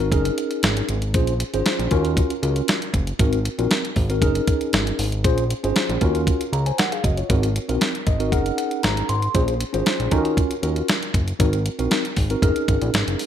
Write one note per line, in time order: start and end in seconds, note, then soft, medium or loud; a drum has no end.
0.00 0.13 G#1 medium
0.00 0.12 C4 medium
0.00 0.11 D#4 medium
0.00 0.12 F#4 medium
0.00 0.12 A#4 medium
0.12 0.31 F#1 loud
0.12 0.94 C#4 medium
0.12 0.94 D#4 medium
0.12 0.94 G#4 medium
0.12 0.95 A#4 medium
0.12 kick loud
0.12 closed hi-hat medium
0.25 closed hi-hat medium
0.38 closed hi-hat medium
0.51 closed hi-hat soft
0.63 0.83 G#1 loud
0.63 snare loud
0.63 closed hi-hat medium
0.77 closed hi-hat medium
0.89 1.16 G#1 medium
0.89 closed hi-hat medium
1.02 closed hi-hat soft
1.14 1.44 A#1 loud
1.14 1.32 C#4 medium
1.14 1.33 F4 medium
1.14 1.33 G#4 medium
1.14 1.33 C5 medium
1.14 kick loud
1.14 closed hi-hat medium
1.27 closed hi-hat medium
1.40 closed hi-hat medium
1.53 1.63 G#1 medium
1.53 1.90 C#4 medium
1.53 1.90 F4 medium
1.53 1.91 G#4 medium
1.53 1.92 C5 medium
1.53 closed hi-hat medium
1.66 snare loud
1.66 closed hi-hat medium
1.79 1.88 A#1 loud
1.79 closed hi-hat medium
1.91 2.21 D#2 loud
1.91 2.33 C#4 medium
1.91 2.33 F4 medium
1.91 2.33 F#4 medium
1.91 2.33 A#4 loud
1.91 kick medium
1.91 closed hi-hat medium
2.05 closed hi-hat soft
2.17 kick loud
2.17 closed hi-hat medium
2.30 closed hi-hat medium
2.42 2.62 C#2 loud
2.42 2.78 C#4 medium
2.42 2.78 F4 medium
2.42 2.78 F#4 medium
2.42 2.79 A#4 medium
2.42 closed hi-hat medium
2.56 closed hi-hat medium
2.68 snare loud
2.68 closed hi-hat loud
2.82 closed hi-hat medium
2.94 3.13 F#1 medium
2.94 kick medium
2.94 closed hi-hat medium
3.07 closed hi-hat medium
3.19 3.49 G#1 loud
3.19 3.37 C4 medium
3.19 3.37 D#4 medium
3.19 3.38 F#4 medium
3.19 3.38 A#4 medium
3.19 kick loud
3.19 closed hi-hat medium
3.33 closed hi-hat medium
3.45 closed hi-hat medium
3.59 3.68 A#1 medium
3.59 3.82 C4 medium
3.59 3.82 D#4 medium
3.59 3.82 F#4 medium
3.59 3.82 A#4 medium
3.59 closed hi-hat soft
3.71 snare loud
3.71 closed hi-hat medium
3.85 closed hi-hat medium
3.96 4.23 G#1 loud
3.96 kick medium
3.96 open hi-hat medium
4.10 4.22 C4 medium
4.10 4.21 D#4 medium
4.10 4.22 F#4 medium
4.10 4.21 A#4 medium
4.10 closed hi-hat soft
4.22 4.41 F#1 loud
4.22 5.04 C#4 medium
4.22 5.04 D#4 medium
4.22 5.04 G#4 medium
4.22 5.05 A#4 medium
4.22 kick loud
4.22 closed hi-hat medium
4.35 closed hi-hat medium
4.47 kick medium
4.47 closed hi-hat medium
4.61 closed hi-hat soft
4.73 4.93 G#1 loud
4.73 snare loud
4.73 closed hi-hat medium
4.87 closed hi-hat medium
4.99 5.26 G#1 medium
4.99 open hi-hat medium
5.12 closed hi-hat soft
5.24 5.54 A#1 loud
5.24 5.43 C#4 medium
5.24 5.43 F4 medium
5.24 5.43 G#4 medium
5.24 5.43 C5 loud
5.24 kick loud
5.24 closed hi-hat medium
5.38 closed hi-hat medium
5.51 closed hi-hat medium
5.64 5.73 G#1 medium
5.64 6.00 C#4 medium
5.64 6.00 F4 medium
5.64 6.02 G#4 medium
5.64 6.02 C5 medium
5.64 closed hi-hat soft
5.76 snare loud
5.76 closed hi-hat medium
5.89 5.98 A#1 loud
5.89 closed hi-hat medium
6.01 6.31 D#2 medium
6.01 6.43 C#4 medium
6.01 6.43 F4 medium
6.01 6.43 F#4 medium
6.01 6.43 A#4 loud
6.01 kick medium
6.01 closed hi-hat medium
6.15 closed hi-hat soft
6.27 kick medium
6.27 closed hi-hat medium
6.41 closed hi-hat medium
6.53 6.72 C#2 loud
6.53 6.66 C#5 soft
6.53 6.66 A#5 medium
6.53 closed hi-hat medium
6.66 6.78 C5 medium
6.66 6.78 G#5 medium
6.66 closed hi-hat soft
6.78 6.92 A#4 medium
6.78 6.91 F#5 medium
6.78 snare medium
6.78 closed hi-hat medium
6.92 7.04 G#4 medium
6.92 7.04 F5 medium
6.92 closed hi-hat medium
7.04 7.23 F#1 medium
7.04 7.17 F#4 medium
7.04 7.17 D#5 medium
7.04 kick medium
7.04 closed hi-hat medium
7.17 7.42 F4 soft
7.17 7.42 C#5 medium
7.17 closed hi-hat soft
7.29 7.59 G#1 loud
7.29 7.48 C4 medium
7.29 7.48 D#4 medium
7.29 7.48 F#4 medium
7.29 7.48 A#4 medium
7.29 kick loud
7.29 closed hi-hat medium
7.43 closed hi-hat medium
7.56 closed hi-hat medium
7.68 7.78 A#1 medium
7.68 7.92 C4 medium
7.68 7.92 D#4 medium
7.68 7.92 F#4 medium
7.68 7.92 A#4 medium
7.68 closed hi-hat medium
7.81 snare loud
7.81 closed hi-hat medium
7.95 closed hi-hat medium
8.07 8.34 G#1 medium
8.07 8.30 D#5 medium
8.07 kick medium
8.07 closed hi-hat medium
8.19 8.32 C4 medium
8.19 8.31 D#4 medium
8.19 8.32 F#4 medium
8.19 8.31 A#4 medium
8.19 closed hi-hat soft
8.32 8.52 F#1 loud
8.32 9.14 C#4 medium
8.32 9.14 D#4 medium
8.32 9.15 G#4 medium
8.32 9.15 A#4 medium
8.32 8.56 F#5 medium
8.32 kick loud
8.32 closed hi-hat medium
8.46 closed hi-hat medium
8.58 8.82 F#5 medium
8.58 closed hi-hat medium
8.71 closed hi-hat soft
8.83 9.03 G#1 loud
8.83 9.07 A#5 medium
8.83 snare loud
8.83 closed hi-hat medium
8.97 closed hi-hat medium
9.09 9.29 G#1 medium
9.09 9.33 C6 medium
9.09 closed hi-hat medium
9.22 closed hi-hat soft
9.34 9.64 A#1 loud
9.34 9.53 C#4 medium
9.34 9.53 F4 medium
9.34 9.53 G#4 medium
9.34 9.53 C5 medium
9.34 kick loud
9.34 closed hi-hat medium
9.48 closed hi-hat medium
9.61 closed hi-hat medium
9.73 9.83 G#1 loud
9.73 10.10 C#4 medium
9.73 10.10 F4 medium
9.73 10.12 G#4 medium
9.73 10.12 C5 medium
9.73 closed hi-hat medium
9.86 snare loud
9.86 closed hi-hat medium
10.00 10.09 A#1 loud
10.00 closed hi-hat medium
10.11 10.41 D#3 medium
10.11 10.53 C#4 loud
10.11 10.53 F4 medium
10.11 10.53 F#4 medium
10.11 10.18 A4 medium
10.11 kick medium
10.11 closed hi-hat medium
10.18 10.57 A#4 loud
10.25 closed hi-hat soft
10.37 kick loud
10.37 closed hi-hat medium
10.51 closed hi-hat medium
10.63 10.82 D#2 medium
10.63 10.99 C#4 medium
10.63 10.99 F4 medium
10.63 10.99 F#4 medium
10.63 10.99 A#4 medium
10.63 closed hi-hat medium
10.76 closed hi-hat soft
10.88 snare loud
10.88 closed hi-hat medium
11.03 closed hi-hat medium
11.14 11.34 F#1 medium
11.14 kick medium
11.14 closed hi-hat medium
11.28 closed hi-hat medium
11.39 11.70 G#1 loud
11.39 11.58 C4 medium
11.39 11.58 D#4 medium
11.39 11.58 F#4 medium
11.39 11.58 A#4 medium
11.39 kick loud
11.39 closed hi-hat medium
11.53 closed hi-hat medium
11.66 closed hi-hat medium
11.79 11.88 A#1 medium
11.79 12.02 C4 medium
11.79 12.02 D#4 medium
11.79 12.03 F#4 medium
11.79 12.03 A#4 loud
11.79 closed hi-hat soft
11.91 snare medium
11.91 closed hi-hat medium
12.05 closed hi-hat medium
12.16 12.36 G#1 medium
12.16 kick medium
12.16 open hi-hat medium
12.30 12.42 C4 medium
12.30 12.41 D#4 medium
12.30 12.43 F#4 medium
12.30 12.41 A#4 medium
12.30 closed hi-hat soft
12.42 12.53 F#1 loud
12.42 13.25 C#4 medium
12.42 13.25 D#4 medium
12.42 13.25 G#4 medium
12.42 13.25 A#4 loud
12.42 kick loud
12.42 closed hi-hat medium
12.56 closed hi-hat medium
12.68 12.78 G#1 medium
12.68 kick medium
12.68 closed hi-hat medium
12.82 12.91 A#1 loud
12.82 closed hi-hat soft
12.94 13.04 G#1 medium
12.94 snare loud
12.94 closed hi-hat loud
13.07 13.16 F#1 medium
13.07 closed hi-hat medium
13.19 open hi-hat medium